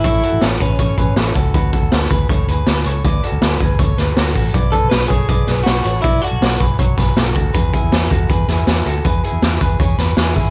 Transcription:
<<
  \new Staff \with { instrumentName = "Clean electric guitar" } { \time 4/4 \key d \lydian \tempo 4 = 160 <a' cis''>8 <fis' a'>4 <gis' b'>8 <a' cis''>8 <gis' b'>8 <e' a'>8 <fis' a'>8 | <fis' b'>8 <fis' a'>4 <gis' b'>8 <a' cis''>8 <gis' b'>4 <a' cis''>8 | <b' d''>8 <fis' a'>4 <gis' b'>8 <a' cis''>8 <gis' b'>8 <fis' a'>8 <fis' a'>8 | <b' d''>8 <gis' b'>4 <a' cis''>8 <b' d''>8 <gis' b'>4 <a' cis''>8 |
<b' d''>8 <fis' a'>4 <gis' b'>8 <fis' cis''>8 <gis' b'>8 <fis' a'>8 <fis' a'>8 | <gis' b'>8 <e' gis'>4 <fis' a'>8 <gis' b'>8 <e' gis'>4 <fis' a'>8 | <gis' b'>8 <e' gis'>4 <gis' b'>8 <gis' cis''>8 <gis' b'>8 <e' gis'>8 <e' gis'>8 | }
  \new Staff \with { instrumentName = "Clean electric guitar" } { \time 4/4 \key d \lydian e'4 cis'8 cis'2 r8 | r1 | r1 | r8 a'8 b'8 gis'4. fis'4 |
e'8 fis'4 r2 r8 | r1 | r1 | }
  \new Staff \with { instrumentName = "Fingered electric bass" } { \clef bass \time 4/4 \key d \lydian a,,8 r16 a,,16 a,,8 a,,8 a,,8 a,,8 a,,8 cis,8 | d,8 r16 d,16 d,8 d,8 d,8 d,8 d,8 cis,8 | d,8 r16 d,16 d,8 d,8 d,8 d,8 d,8 a,,8 | b,,8 r16 b,,16 b,,8 b,,8 b,,8 b,,8 b,,8 a,,8 |
b,,8 r16 b,,16 b,,8 b,,8 b,,8 b,,8 b,,8 d,8 | e,8 r16 e,16 e,8 e,8 e,8 e,8 e,8 d,8 | e,8 r16 e,16 e,8 e,8 e,8 e,8 e,8 gis,,8 | }
  \new DrumStaff \with { instrumentName = "Drums" } \drummode { \time 4/4 <hh bd>8 hh8 <hh sn>8 <hh bd>8 <hh bd>8 <hh bd>8 <hh sn>8 <hh bd>8 | <hh bd>8 <hh bd>8 <hh sn>8 <hh bd>8 <hh bd>8 hh8 <hh sn>8 hh8 | <hh bd>8 hh8 <hh sn>8 <hh bd>8 <hh bd>8 <hh sn>8 <hh sn>8 <hho bd>8 | <hh bd>8 <hh bd>8 <hh sn>8 <hh bd>8 <hh bd>8 <hh sn>8 <hh sn>8 hh8 |
<hh bd>8 hh8 <hh sn>8 <hh bd>8 <hh bd>8 <hh bd sn>8 <hh sn>8 <hh bd>8 | <hh bd>8 <hh bd>8 <hh sn>8 <hh bd>8 <hh bd>8 <hh sn>8 <hh sn>8 hh8 | <hh bd>8 hh8 <hh sn>8 <hh bd>8 <hh bd>8 <hh sn>8 <hh sn>8 <hho bd>8 | }
>>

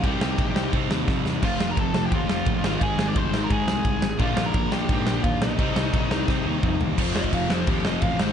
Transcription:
<<
  \new Staff \with { instrumentName = "Lead electric guitar" } { \time 4/4 \key f \dorian \tempo 4 = 173 <g' g''>2 r2 | <f' f''>8. <bes' bes''>16 <a' a''>8. <g' g''>16 <f' f''>2 | <aes' aes''>8. <d'' d'''>16 <c'' c'''>8. <bes' bes''>16 <aes' aes''>2 | <f' f''>8. <bes' bes''>8. <g' g''>4. <f' f''>8 <ees' ees''>8~ |
<ees' ees''>2.~ <ees' ees''>8 r8 | r8 ees''8 f''8 c''8 g'8 ees''8 f''8 c''8 | }
  \new Staff \with { instrumentName = "Overdriven electric guitar" } { \time 4/4 \key f \dorian <c g c' ees'>4. <c g c' ees'>2~ <c g c' ees'>8 | <f a c' f'>4. <f a c' f'>2 <aes, ees aes c' ees'>8~ | <aes, ees aes c' ees'>4 <aes, ees aes c' ees'>2~ <aes, ees aes c' ees'>8 r8 | <bes, d f bes d'>4. <bes, d f bes d'>2~ <bes, d f bes d'>8 |
<c g c' ees'>4. <c g c' ees'>2~ <c g c' ees'>8 | <f a c' f'>4. <f a c' f'>2 <aes, ees aes c' ees'>8 | }
  \new Staff \with { instrumentName = "Distorted electric guitar" } { \clef bass \time 4/4 \key f \dorian <c g c'>2 <c g c'>2 | <f, c f>2 <f, c f>4. <aes, ees aes>8~ | <aes, ees aes>4. <aes, ees aes>2 r8 | <bes, f bes>2 <bes, f bes>2 |
<c g c'>2 <c g c'>2 | <f, c f>2 <f, c f>4. <aes, ees aes>8 | }
  \new Staff \with { instrumentName = "Distorted electric guitar" } { \clef bass \time 4/4 \key f \dorian <c g c'>1 | <f, c f>2.~ <f, c f>8 <aes, ees aes>8~ | <aes, ees aes>2.~ <aes, ees aes>8 r8 | <bes, f bes>1 |
<c g c'>1 | <f, c f>2.~ <f, c f>8 <aes, ees aes>8 | }
  \new Staff \with { instrumentName = "Picked electric bass" } { \clef bass \time 4/4 \key f \dorian c,8 c,8 bes,,8 c,8 c8 ees,8 f,8 e,8 | f,,8 f,,8 f,,8 f,,8 ees,8 f,,8 bes,,8 aes,,8 | aes,,8 aes,,8 f,,8 aes,,8 aes,8 c,8 c,8 aes,,8 | bes,,8 bes,,8 bes,,8 bes,,8 aes,8 bes,,8 ees,8 b,,8 |
c,8 c,8 bes,,8 c,8 c8 ees,8 f,8 ees,8 | f,,8 f,,8 f,,8 f,,8 ees,8 f,,8 a,,8 aes,,8 | }
  \new DrumStaff \with { instrumentName = "Drums" } \drummode { \time 4/4 <bd cymr>8 sn8 <bd cymr>8 sn8 <bd cymr>8 sn8 <bd sn>8 sn8 | <cymc bd>8 sn8 <bd cymr>8 sn8 <bd cymr>8 sn8 <bd cymr>8 sn8 | <bd cymr>8 sn8 <bd cymr>8 sn8 <bd cymr>8 sn8 <bd cymr>8 sn8 | <bd cymr>8 sn8 <bd cymr>8 sn8 <bd cymr>8 sn8 <bd cymr>8 sn8 |
<bd cymr>8 sn8 <bd cymr>8 sn8 <bd sn>4 <bd toml>8 tomfh8 | <cymc bd>8 sn16 bd16 <cymc bd>8 sn8 <cymc bd>8 sn8 <cymc bd>8 sn8 | }
>>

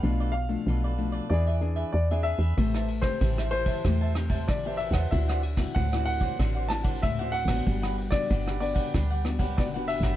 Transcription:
<<
  \new Staff \with { instrumentName = "Grand piano" } { \time 4/4 \key d \mixolydian \tempo 4 = 94 f''8 f''4. d''4 d''8 e''8~ | e''8. c''8. c''4. d''8 e''16 fis''16 | e''4 fis''8 fis''4 a''8 e''8 fis''8~ | fis''8. d''8. d''4. d''8 e''8 | }
  \new Staff \with { instrumentName = "Cavaquinho" } { \time 4/4 \key d \mixolydian <f' a' b' d''>16 <a' b' d''>16 r8 <f' a' b' d''>16 <a' b' d''>8 <a' b' d''>16 <d' gis' b' e''>16 <gis' b' e''>16 r16 <gis' b' e''>8 <gis' b' e''>16 <d' gis' b' e''>16 <gis' b' e''>16 | <g' c'' e'' a''>16 <c'' e'' a''>16 r8 <g' c'' e'' a''>16 <c'' e'' a''>8 <c'' e'' a''>16 <g' c'' e'' a''>16 <c'' e'' a''>16 r16 <c'' e'' a''>8 <c'' e'' a''>16 <g' c'' e'' a''>16 <c'' e'' a''>16 | <d' c'' d'' fis''>16 <c'' d'' fis''>16 r8 <d' c'' d'' fis''>16 <c'' d'' fis''>8 <c'' d'' fis''>16 <d' c'' d'' fis''>16 <c'' d'' fis''>16 r16 <c'' d'' fis''>8 <c'' d'' fis''>16 <d' c'' d'' fis''>16 <c'' d'' fis''>16 | <d' g' b' fis''>16 <g' b' fis''>16 r8 <d' g' b' fis''>16 <g' b' fis''>8 <g' b' fis''>16 <d' g' b' fis''>16 <g' b' fis''>16 r16 <g' b' fis''>8 <g' b' fis''>16 <d' g' b' fis''>16 <g' b' fis''>16 | }
  \new Staff \with { instrumentName = "Nylon-string guitar" } { \time 4/4 \key d \mixolydian << { <f a d'>8 r16 <f a d'>8. <f a d'>8 <c' d' gis'>16 r16 <c' d' gis'>8 r16 <c' d' gis'>8. | <c' g' b'>8 r16 <c' g'>8. <c' g'>4 <c' g'>8. <c' g' b'>8. | <c' e' fis'>8 r16 <c' e' fis'>8 <c' e' fis'>8. <c' e' fis'>8 <c' e' fis'>8 r16 <c' e' fis'>8 <b d' fis'>16~ | <b d' fis'>8. <b d' fis'>8. <b d' fis'>8. r16 <b d' fis'>16 r16 <b d' fis'>16 <b d' fis'>8. | } \\ { b,4 b,4 e4 r4 | a4 e4 a4 e4 | d4 a,4 d4 a,4 | g4 d4 g4 d4 | } >> }
  \new Staff \with { instrumentName = "FM bass" } { \clef bass \time 4/4 \key d \mixolydian b,,4 b,,4 e,4 e,8. e,16 | a,,4 a,,4 e,4 a,,8. e,16 | d,4 d,4 a,,4 d,8. a,,16 | g,,4 g,,4 d,4 g,,8. g,,16 | }
  \new DrumStaff \with { instrumentName = "Drums" } \drummode { \time 4/4 r4 r4 r4 r4 | <bd cymr>16 ss16 cymr16 <bd cymr ss>16 <bd cymr>16 ss16 cymr16 <bd cymr>16 <bd cymr ss>8 <cymr ss>16 <bd cymr>16 <bd cymr ss>8 cymr16 <bd cymr ss>16 | <bd cymr>16 ss16 cymr16 <bd cymr ss>16 <bd cymr>16 ss16 cymr16 <bd cymr>16 <bd cymr ss>8 <cymr ss>16 <bd cymr>16 <bd cymr ss>8 cymr16 <bd cymr ss>16 | <bd cymr>16 ss16 cymr16 <bd cymr ss>16 <bd cymr>16 ss16 cymr16 <bd cymr>16 <bd cymr ss>8 <cymr ss>16 <bd cymr>16 <bd cymr ss>8 cymr16 <bd cymr ss>16 | }
>>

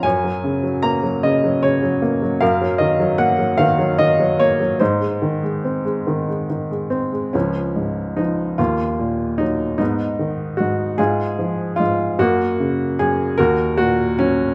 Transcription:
<<
  \new Staff \with { instrumentName = "Upright piano" } { \time 6/8 \key ees \dorian \tempo 4. = 50 << { aes''4 bes''8 ees''8 des''4 | f''8 ees''8 ges''8 f''8 ees''8 des''8 | c''2 r8 c'8 | des'4 ees'8 f'4 ees'8 |
ees'4 ges'8 aes'4 f'8 | ges'4 aes'8 bes'8 ges'8 des'8 | } \\ { des''4. r4. | bes'4. r4. | ees'2 r4 | f4. bes4. |
ces'4. f'4. | bes4. ges'4. | } >> }
  \new Staff \with { instrumentName = "Upright piano" } { \clef bass \time 6/8 \key ees \dorian ges,16 ges16 des16 ges16 bes16 ges16 des16 ges16 des16 ges16 bes16 ges16 | ges,16 ges16 ees16 ges16 bes16 ges16 ees16 ges16 ees16 ges16 bes16 ges16 | aes,16 aes16 ees16 aes16 c'16 aes16 ees16 aes16 ees16 aes8 aes16 | des,8 aes,8 f8 ees,8 bes,8 ges8 |
aes,8 ees8 aes,8 aes,8 f8 aes,8 | ges,8 des8 ges,8 ees,8 bes,8 ges8 | }
>>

